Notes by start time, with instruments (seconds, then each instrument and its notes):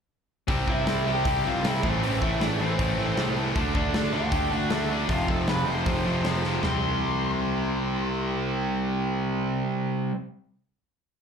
0.47 picked electric bass C2, distorted electric guitar C3 G3 C4, kick, open hi-hat
0.67 picked electric bass C2, distorted electric guitar C3 G3 C4, lead electric guitar E4, kick
0.72 lead electric guitar E5
0.86 picked electric bass C2, distorted electric guitar C3 G3 C4, snare, open hi-hat
1.06 picked electric bass C2, distorted electric guitar C3 G3 C4, lead electric guitar G4 G5
1.25 picked electric bass C2, distorted electric guitar C3 G3 C4, kick, open hi-hat
1.45 picked electric bass C2, distorted electric guitar C3 G3 C4, lead electric guitar F4 F5
1.64 picked electric bass C2, distorted electric guitar C3 G3 C4, lead electric guitar E4 E5, snare, open hi-hat
1.83 picked electric bass A1, distorted electric guitar A2 E3 A3, lead electric guitar C4 C5, kick
2.02 picked electric bass A1, distorted electric guitar A2 E3 A3, lead electric guitar C4 C5, open hi-hat
2.21 picked electric bass A1, distorted electric guitar A2 E3 A3, lead electric guitar E4 E5, kick
2.40 picked electric bass A1, distorted electric guitar A2 E3 A3, lead electric guitar D4 D5, snare, open hi-hat
2.59 picked electric bass A1, distorted electric guitar A2 E3 A3, lead electric guitar C4 C5
2.78 picked electric bass A1, distorted electric guitar A2 E3 A3, kick, open hi-hat
2.98 picked electric bass A1, distorted electric guitar A2 E3 A3
3.17 picked electric bass C2, distorted electric guitar A2 E3 A3, snare, open hi-hat
3.37 distorted electric guitar A2 E3 A3
3.56 picked electric bass D2, distorted electric guitar D3 A3 D4, kick, open hi-hat
3.75 picked electric bass D2, distorted electric guitar D3 A3 D4, lead electric guitar D4 D5, kick
3.93 picked electric bass D2, distorted electric guitar D3 A3 D4, snare, open hi-hat
4.13 picked electric bass D2, distorted electric guitar D3 A3 D4, lead electric guitar G4 G5
4.32 picked electric bass D2, distorted electric guitar D3 A3 D4, kick, open hi-hat
4.51 picked electric bass D2, distorted electric guitar D3 A3 D4, lead electric guitar F#4 F#5
4.70 picked electric bass D2, distorted electric guitar D3 A3 D4, lead electric guitar E4 E5, snare, open hi-hat
4.90 distorted electric guitar D3 A3 D4, lead electric guitar D4 D5
5.09 picked electric bass F1, distorted electric guitar F2 C3 F3, lead electric guitar F4 F5, kick, open hi-hat
5.28 picked electric bass F1, distorted electric guitar F2 C3 F3, lead electric guitar A4 A5, kick
5.47 picked electric bass F1, distorted electric guitar F2 C3 F3, lead electric guitar B4 B5, snare, open hi-hat
5.67 picked electric bass F1, distorted electric guitar F2 C3 F3, lead electric guitar C5 C6
5.86 picked electric bass F1, distorted electric guitar F2 C3 F3, kick, open hi-hat
6.05 picked electric bass F1, distorted electric guitar F2 C3 F3
6.24 picked electric bass F1, distorted electric guitar F2 C3 F3, snare, open hi-hat
6.44 distorted electric guitar F2 C3 F3, snare
6.62 picked electric bass C2, distorted electric guitar C3 G3 C4, lead electric guitar C6, snare, floor tom